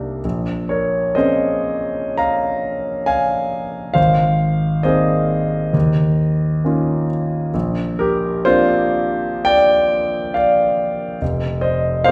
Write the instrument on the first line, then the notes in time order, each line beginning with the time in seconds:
grand piano
Already playing: C2 A#3 D4 D#4 G4
0.25 A#1
0.69 A#4 C#5
1.15 A#3 C4 C#4 G#4 C5 D#5
2.18 F5 A#5
3.06 F5 G#5
3.94 G#1 C5 F5
4.83 A#3 C4 D#4 G#4 C5 D#5
5.73 D#2
6.65 A#3 C#4 D#4 F4
7.54 A#1
7.99 G4 A#4
8.45 A#3 C4 D4 F4 C5
9.45 D5 G5
10.34 D5 F5
11.21 F1
11.61 C5 D#5
12.04 A#3 C4 D#4 G4 C5 F5